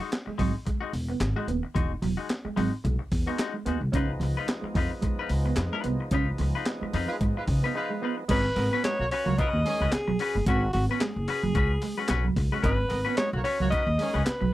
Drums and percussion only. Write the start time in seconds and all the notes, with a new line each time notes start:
0.12 snare, clap, closed hi-hat
0.39 kick, open hi-hat
0.67 kick, closed hi-hat
0.93 open hi-hat
1.21 snare, clap, closed hi-hat
1.48 closed hi-hat
1.76 kick, closed hi-hat
2.02 open hi-hat
2.29 snare, clap, closed hi-hat
2.57 open hi-hat
2.85 kick, closed hi-hat
3.12 kick, open hi-hat
3.39 snare, clap, closed hi-hat
3.66 closed hi-hat
3.93 kick, closed hi-hat
4.21 open hi-hat
4.48 snare, clap, closed hi-hat
4.75 kick, open hi-hat
5.02 kick, closed hi-hat
5.29 open hi-hat
5.56 snare, clap, closed hi-hat
5.84 closed hi-hat
6.11 kick, closed hi-hat
6.38 open hi-hat
6.65 snare, clap, closed hi-hat
6.93 open hi-hat
7.21 kick, closed hi-hat
7.47 kick, open hi-hat
8.29 kick, closed hi-hat, crash
8.56 open hi-hat
8.84 snare, clap, closed hi-hat
9.11 open hi-hat
9.38 kick, closed hi-hat
9.66 open hi-hat
9.92 snare, clap, closed hi-hat
10.19 open hi-hat
10.46 kick, closed hi-hat
10.73 open hi-hat
11.00 snare, clap, closed hi-hat
11.28 open hi-hat
11.55 kick, closed hi-hat
11.82 open hi-hat
12.08 snare, clap, closed hi-hat
12.36 kick, open hi-hat
12.64 kick, closed hi-hat
12.90 open hi-hat
13.17 snare, clap, closed hi-hat
13.45 open hi-hat
13.72 kick, closed hi-hat
13.99 open hi-hat
14.26 snare, clap, closed hi-hat